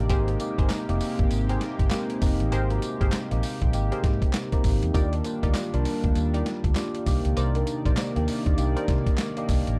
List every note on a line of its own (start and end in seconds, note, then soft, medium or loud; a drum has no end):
0.00 4.90 C3 medium
0.00 0.10 A#3 loud
0.00 4.90 A#3 medium
0.00 0.12 D4 medium
0.00 0.11 D#4 medium
0.00 0.11 G4 loud
0.09 0.35 G#1 loud
0.09 4.91 G#3 medium
0.09 0.33 A#3 medium
0.09 0.34 C4 medium
0.09 0.34 D#4 medium
0.09 0.29 G4 loud
0.09 2.50 G4 medium
0.09 0.34 G4 loud
0.09 0.29 G#4 medium
0.09 0.30 A#4 medium
0.09 0.30 C5 loud
0.09 kick loud
0.09 closed hi-hat medium
0.09 tambourine medium
0.28 closed hi-hat medium
0.40 0.73 A#3 medium
0.40 0.74 C4 medium
0.40 0.74 D#4 medium
0.40 0.74 G4 loud
0.40 closed hi-hat medium
0.40 tambourine medium
0.58 0.69 G1 medium
0.58 0.72 G4 medium
0.58 0.72 G#4 medium
0.58 0.72 A#4 medium
0.58 0.73 C5 medium
0.58 kick loud
0.58 closed hi-hat medium
0.69 snare loud
0.69 clap medium
0.69 closed hi-hat medium
0.69 tambourine medium
0.89 0.99 F1 loud
0.89 1.62 A#3 loud
0.89 1.62 C4 loud
0.89 1.62 D#4 loud
0.89 1.63 G4 loud
0.89 closed hi-hat medium
1.01 open hi-hat medium
1.01 tambourine medium
1.19 1.29 G1 medium
1.19 kick loud
1.19 closed hi-hat soft
1.31 1.57 G#1 loud
1.31 closed hi-hat medium
1.31 tambourine medium
1.49 1.63 G4 medium
1.49 1.63 G#4 medium
1.49 1.63 A#4 medium
1.49 1.64 C5 medium
1.49 closed hi-hat medium
1.61 snare medium
1.61 closed hi-hat medium
1.79 1.90 G1 medium
1.79 kick loud
1.79 closed hi-hat medium
1.91 2.15 A#3 loud
1.91 2.15 C4 medium
1.91 2.15 D#4 medium
1.91 2.16 G4 loud
1.91 snare loud
1.91 clap medium
1.91 closed hi-hat medium
1.91 tambourine medium
2.10 closed hi-hat medium
2.22 2.38 F1 loud
2.22 2.55 A#3 medium
2.22 2.55 C4 medium
2.22 2.55 D#4 medium
2.22 2.56 G4 loud
2.22 kick loud
2.22 open hi-hat loud
2.22 tambourine medium
2.40 2.50 A1 medium
2.40 closed hi-hat medium
2.52 2.78 G#1 loud
2.52 2.72 G4 loud
2.52 4.92 G4 medium
2.52 2.72 G#4 medium
2.52 2.72 A#4 medium
2.52 2.72 C5 loud
2.52 closed hi-hat medium
2.52 tambourine medium
2.70 3.11 A#3 medium
2.70 3.12 C4 medium
2.70 3.12 D#4 medium
2.70 2.76 F#4 medium
2.70 closed hi-hat medium
2.78 3.15 G4 loud
2.78 closed hi-hat medium
2.82 tambourine medium
3.01 3.11 G1 medium
3.01 3.15 G4 medium
3.01 3.15 G#4 medium
3.01 3.15 A#4 medium
3.01 3.15 C5 medium
3.01 kick medium
3.01 closed hi-hat medium
3.12 snare loud
3.12 clap medium
3.12 closed hi-hat medium
3.12 tambourine loud
3.31 3.41 A#1 medium
3.31 3.63 A#3 medium
3.31 3.64 C4 medium
3.31 3.64 D#4 medium
3.31 3.64 G4 loud
3.31 closed hi-hat medium
3.43 open hi-hat medium
3.43 tambourine medium
3.62 3.72 A#1 medium
3.62 kick medium
3.62 closed hi-hat medium
3.73 3.89 G#1 loud
3.73 4.29 A#3 medium
3.73 4.29 C4 medium
3.73 4.30 D#4 medium
3.73 4.30 G4 loud
3.73 closed hi-hat medium
3.73 tambourine medium
3.91 4.06 G4 medium
3.91 4.06 G#4 medium
3.91 4.06 A#4 medium
3.91 4.06 C5 medium
3.91 closed hi-hat medium
4.04 4.19 G#2 loud
4.04 kick loud
4.04 snare medium
4.04 closed hi-hat medium
4.22 kick medium
4.22 closed hi-hat medium
4.33 snare loud
4.33 clap medium
4.33 closed hi-hat medium
4.33 tambourine medium
4.52 4.85 A#3 loud
4.52 4.85 C4 loud
4.52 4.85 D#4 medium
4.52 4.85 G4 loud
4.52 kick loud
4.52 closed hi-hat medium
4.64 4.80 G#1 medium
4.64 kick loud
4.64 open hi-hat loud
4.64 tambourine medium
4.83 4.93 E2 medium
4.83 closed hi-hat medium
4.94 5.20 D#2 loud
4.94 7.04 G3 medium
4.94 5.18 A#3 medium
4.94 9.79 A#3 medium
4.94 5.18 D4 medium
4.94 5.14 D#4 loud
4.94 5.18 F4 medium
4.94 5.14 G4 medium
4.94 5.19 G4 loud
4.94 5.14 A#4 medium
4.94 5.14 D5 loud
4.94 kick loud
4.94 closed hi-hat medium
4.94 tambourine medium
5.13 closed hi-hat medium
5.24 5.58 A#3 medium
5.24 5.58 D4 medium
5.24 5.59 F4 medium
5.24 5.59 G4 loud
5.24 closed hi-hat medium
5.24 tambourine medium
5.43 5.53 D2 medium
5.43 5.57 D#4 medium
5.43 5.57 G4 medium
5.43 5.57 A#4 medium
5.43 5.57 D5 medium
5.43 kick loud
5.43 closed hi-hat medium
5.54 snare loud
5.54 clap medium
5.54 closed hi-hat medium
5.54 tambourine medium
5.73 5.84 C2 medium
5.73 6.47 A#3 loud
5.73 6.47 D4 loud
5.73 6.47 F4 loud
5.73 6.47 A#4 loud
5.73 closed hi-hat medium
5.85 open hi-hat medium
5.85 tambourine medium
6.04 6.14 D2 medium
6.04 kick loud
6.04 closed hi-hat medium
6.15 6.42 D#2 loud
6.15 closed hi-hat medium
6.15 tambourine medium
6.34 6.48 D#4 medium
6.34 6.48 G4 medium
6.34 6.48 A#4 medium
6.34 6.48 D5 medium
6.34 closed hi-hat medium
6.46 snare medium
6.46 closed hi-hat medium
6.64 6.74 D2 medium
6.64 kick loud
6.64 closed hi-hat medium
6.75 7.00 A#3 loud
6.75 7.00 D4 medium
6.75 7.00 F4 medium
6.75 7.00 G4 loud
6.75 snare loud
6.75 clap medium
6.75 closed hi-hat medium
6.75 tambourine loud
6.95 closed hi-hat medium
7.06 7.22 C2 loud
7.06 9.76 C3 medium
7.06 9.77 D#3 medium
7.06 7.44 A#3 medium
7.06 7.44 D4 medium
7.06 7.45 D#4 medium
7.06 7.45 G4 loud
7.06 9.77 D5 medium
7.06 kick loud
7.06 open hi-hat loud
7.06 tambourine medium
7.25 7.35 C#2 loud
7.25 closed hi-hat medium
7.36 7.63 C2 loud
7.36 7.56 D#4 medium
7.36 7.57 A#4 medium
7.36 7.57 C5 medium
7.36 7.57 D5 loud
7.36 closed hi-hat medium
7.36 tambourine medium
7.55 7.96 A#3 medium
7.55 7.96 D4 medium
7.55 7.96 D#4 medium
7.55 7.97 A#4 loud
7.55 closed hi-hat medium
7.67 closed hi-hat medium
7.67 tambourine medium
7.85 7.96 A#1 loud
7.85 7.99 D#4 medium
7.85 8.00 A#4 medium
7.85 8.00 C5 medium
7.85 8.00 D5 medium
7.85 kick loud
7.85 closed hi-hat medium
7.97 snare loud
7.97 clap medium
7.97 closed hi-hat medium
7.97 tambourine loud
8.16 8.26 D#2 medium
8.16 8.48 A#3 loud
8.16 8.48 D4 medium
8.16 8.48 D#4 medium
8.16 8.49 G4 loud
8.16 closed hi-hat medium
8.28 open hi-hat medium
8.28 tambourine medium
8.46 8.56 D#2 medium
8.46 kick medium
8.46 closed hi-hat medium
8.58 8.74 C2 loud
8.58 9.14 A#3 medium
8.58 9.14 D4 medium
8.58 9.14 D#4 medium
8.58 9.15 G4 loud
8.58 closed hi-hat medium
8.58 tambourine medium
8.76 8.90 D#4 medium
8.76 8.90 A#4 medium
8.76 8.90 C5 medium
8.76 8.91 D5 medium
8.76 closed hi-hat medium
8.88 9.04 C3 loud
8.88 kick loud
8.88 snare medium
8.88 closed hi-hat medium
9.06 kick loud
9.06 closed hi-hat medium
9.18 snare loud
9.18 clap medium
9.18 closed hi-hat medium
9.18 tambourine medium
9.37 9.69 A#3 loud
9.37 9.69 D4 loud
9.37 9.70 D#4 loud
9.37 9.70 G4 loud
9.37 closed hi-hat medium
9.49 9.65 C2 medium
9.49 kick loud
9.49 open hi-hat loud
9.49 tambourine medium
9.67 9.78 A1 medium
9.67 closed hi-hat medium